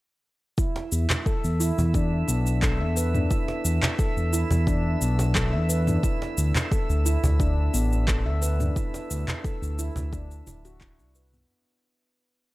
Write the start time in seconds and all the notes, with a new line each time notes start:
0.58 E4 E5, kick, shaker
0.76 cajon slap
0.92 E2, shaker
1.10 cajon bass, clap, shaker
1.26 A4, kick, shaker
1.44 E2, shaker
1.60 E4, shaker
1.78 E2, cajon bass, shaker
1.94 D4, kick, shaker
2.28 B1 B3, cajon slap, shaker
2.47 shaker
2.62 A4, kick, clap, shaker
2.80 E2 E5
2.96 B4, cajon slap, shaker
3.14 D4, mid tom, shaker
3.31 E4, kick, shaker
3.48 cajon slap
3.65 E2, shaker
3.83 cajon bass, clap, shaker
3.99 A4, kick, shaker
4.17 E2, shaker
4.33 E4, shaker
4.51 E2, cajon bass, shaker
4.67 D4, kick, shaker
5.01 B1 B3, shaker
5.19 cajon slap, shaker
5.35 A4, kick, clap, shaker
5.53 E2 E5
5.69 B4, cajon slap, shaker
5.87 D4, mid tom, shaker
6.03 E4, kick, shaker
6.22 cajon slap
6.38 D2, shaker
6.55 cajon bass, clap, shaker
6.72 A4, kick, shaker
6.89 D2, shaker
7.06 E4, shaker
7.24 D2, cajon bass, shaker
7.40 D4, kick, shaker
7.74 A1 B3, cajon slap, shaker
7.92 shaker
8.08 A4, kick, clap, shaker
8.26 D2 E5
8.42 B4, cajon slap, shaker
8.60 D4, mid tom, shaker
8.76 E4, kick, shaker
8.94 cajon slap, shaker
9.10 D2, shaker
9.28 cajon bass, clap, shaker
9.44 A4, kick, shaker
9.62 D2, shaker
9.79 E4, shaker
9.96 D2, cajon bass, shaker
10.13 D4, kick, shaker
10.31 shaker
10.47 D1 E4, cajon bass, shaker
10.65 F#4, cajon slap, shaker
10.81 E4, kick, clap, shaker
10.99 C2 D4, shaker
11.15 B4, cajon slap, shaker
11.33 B3, mid tom, shaker